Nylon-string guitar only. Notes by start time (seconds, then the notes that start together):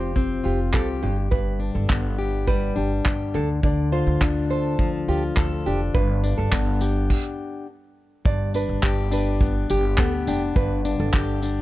Already playing: C5
0.45 G4
0.74 A4
1.02 G4
1.31 B4
1.75 A4
2.48 B4
2.77 G4
3.35 A4
3.64 D5
3.92 C5
4.50 C5
5.09 G4
5.37 A4
5.66 G4
5.94 B4
6.38 A4
8.26 D5
8.55 B4
9.13 B4
9.70 G4
9.98 A4
10.28 G4
10.56 B4
11.00 A4